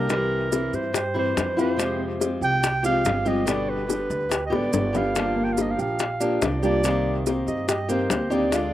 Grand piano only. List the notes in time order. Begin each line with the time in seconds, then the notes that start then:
0.09 G3 G4
0.51 E4 E5
0.94 G4 G5
1.14 C4 C5
1.58 F4 F5
1.99 C4 C5
2.42 G4 G5
2.84 F4 F5
3.26 G3 G4
3.47 G3 G4
3.89 D4 D5
4.31 G4 G5
4.52 B3 B4
4.94 D4 D5
5.36 A#3 A#4
5.78 G4 G5
6.20 D4 D5
6.63 G3 G4
6.84 G3 G4
7.26 C4 C5
7.68 G4 G5
7.89 A#3 A#4
8.30 D4 D5